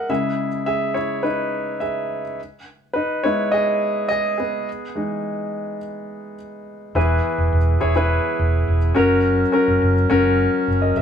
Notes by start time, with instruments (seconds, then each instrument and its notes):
Already playing: grand piano G#4 A#4 D#5 E5 F#5
0.09 grand piano C#3 G#3 E4 G#4 E5
0.66 grand piano G#4 E5
0.94 grand piano E4 C#5
1.23 grand piano D#4 B4
1.80 grand piano G#4 E5
2.94 grand piano D#4 B4
3.23 grand piano G#3 B3 D#4 E4 C#5
3.52 grand piano G#4 D#5
4.09 grand piano G#4 D#5
4.38 grand piano B3 G#4
4.95 grand piano E3 G#3 D#4
6.95 fingered electric bass E1, grand piano E3 E4 G#4 B4, tonewheel organ E3 B3 G#4
7.38 fingered electric bass E1
7.53 fingered electric bass E1
7.81 fingered electric bass E1, grand piano E4 G#4 C#5
7.96 grand piano E4 G#4 B4
8.39 fingered electric bass E1
8.68 fingered electric bass E1
8.95 fingered electric bass F#1, tonewheel organ F#3 C#4 A#4, grand piano C#4 F#4 A#4
9.52 grand piano C#4 F#4 A#4
9.68 fingered electric bass F#1
9.82 fingered electric bass F#1
10.10 fingered electric bass F#1, grand piano C#4 F#4 A#4
10.68 fingered electric bass F#1
10.82 grand piano A#4 D#5
10.96 fingered electric bass F#1, grand piano A#4 E5